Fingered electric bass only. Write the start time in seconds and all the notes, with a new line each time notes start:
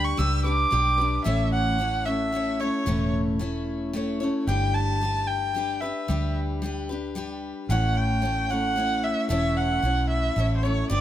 Already playing: D2
0.19 C#2
0.73 B1
1.26 A1
2.87 E1
4.47 G1
6.09 D2
7.69 A1
9.30 E1
9.83 B1
10.36 A1
10.90 G1